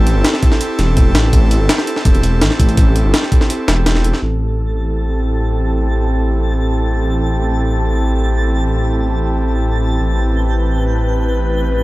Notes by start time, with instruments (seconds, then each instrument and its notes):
Already playing: detuned saw bass A1, analog synth pad C4 E4 G4 A4
0.07 closed hi-hat
0.16 detuned saw bass G1
0.24 snare, closed hi-hat
0.34 snare
0.43 kick, closed hi-hat
0.52 snare
0.61 closed hi-hat
0.79 detuned saw bass E1, snare, closed hi-hat
0.97 kick, closed hi-hat
1.15 detuned saw bass A1, snare, closed hi-hat
1.33 detuned saw bass A1, kick, closed hi-hat
1.51 closed hi-hat
1.60 detuned saw bass G1
1.69 snare, closed hi-hat
1.78 snare
1.87 closed hi-hat
1.96 snare
2.05 detuned saw bass E1, kick, closed hi-hat
2.15 closed hi-hat
2.23 closed hi-hat
2.41 detuned saw bass A1, snare, closed hi-hat
2.51 snare
2.60 detuned saw bass A1, kick, closed hi-hat
2.69 closed hi-hat
2.77 kick, closed hi-hat
2.96 closed hi-hat
3.05 detuned saw bass G1
3.14 snare, closed hi-hat
3.23 snare
3.32 kick, closed hi-hat
3.41 snare
3.50 closed hi-hat
3.68 detuned saw bass E1, snare, closed hi-hat
3.86 snare, closed hi-hat
3.95 snare
4.04 detuned saw bass E1, closed hi-hat
4.13 snare
4.22 detuned saw bass A1, analog synth pad C4 E4 G4 A4, synth texture A5 A6
10.00 detuned saw bass A1, analog synth pad B4, synth texture G6